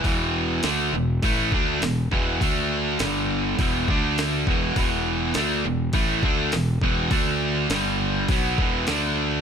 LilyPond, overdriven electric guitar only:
\new Staff \with { instrumentName = "Overdriven electric guitar" } { \clef bass \time 4/4 \key e \minor \tempo 4 = 102 <e, b, e>4 <d a d'>8 <e, b,>8 <a, e a>8 <d a d'>8 <e, b,>8 <e, b, e>8 | <d a d'>4 <g, d g>4 <e, b, e>8 <d a d'>4 <e, b, e>8 | <e, b, e>4 <d a d'>8 <e, b,>8 <a, e a>8 <d a d'>8 <e, b,>8 <e, b, e>8 | <d a d'>4 <g, d g>4 <b, fis b>8 <e, b, e>8 <d a d'>4 | }